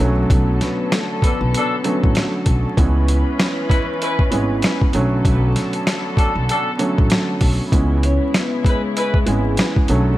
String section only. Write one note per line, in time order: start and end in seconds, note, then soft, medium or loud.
0.00 2.75 D3 medium
0.00 2.72 B3 medium
0.00 2.75 A4 medium
2.78 4.92 E3 medium
2.78 4.92 C#4 medium
2.78 4.92 B4 medium
4.94 7.70 D3 medium
4.94 7.69 B3 medium
4.94 7.70 A4 medium
7.70 9.85 C#3 medium
7.70 10.18 B3 medium
7.70 9.85 E4 medium
9.90 10.18 D3 medium
9.90 10.18 A4 medium